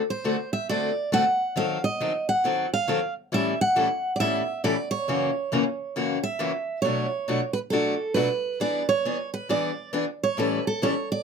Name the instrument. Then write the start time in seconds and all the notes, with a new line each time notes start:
steel-string acoustic guitar
0.10 C5
0.24 D3 A3 C4 F#4 A4
0.53 E5
0.69 D3 A3 C4 F#4 A4 D5
1.12 D3 A3 C4 F#4 A4 F#5
1.56 D#3 F#3 C4 D#4 A4 F5
1.84 D#5
2.00 D#3 F#3 C4 D#4 A4
2.29 F#5
2.44 D#3 F#3 C4 D#4 A4
2.74 F5
2.88 D#3 F#3 C4 D#4 A4
3.32 A2 E3 G3 C#4 E4 A4 E5
3.61 F#5
3.76 A2 E3 G3 C#4 E4 A4
4.16 D5
4.20 A2 E3 G3 C#4 E4 A4 E5
4.64 A2 E3 G3 C#4 E4 A4 D5
4.91 C#5
5.08 F#2 C#3 E3 A#3 C#4 F#4
5.52 F#2 C#3 E3 A#3 C#4 F#4
5.96 F#2 C#3 E3 A#3 C#4 F#4
6.23 E5
6.39 F#2 C#3 E3 A#3 C#4 F#4
6.82 B2 F#3 A3 D4 F#4 C#5
7.28 B2 F#3 A3 D4 F#4
7.53 B4
7.70 B2 F#3 A3 D4 F#4 A4
8.14 B2 F#3 A3 D4 F#4 B4
8.60 E3 B3 D4 G#4 D5
8.89 C#5
9.05 E3 B3 D4 G#4
9.34 B4
9.49 E3 B3 D4 G#4 D5
9.93 E3 B3 D4 G#4
10.23 C#5
10.37 A2 E3 G3 C#4 E4 A4 B4
10.67 A4
10.82 A2 E3 G3 C#4 E4 A4 C#5
11.12 D5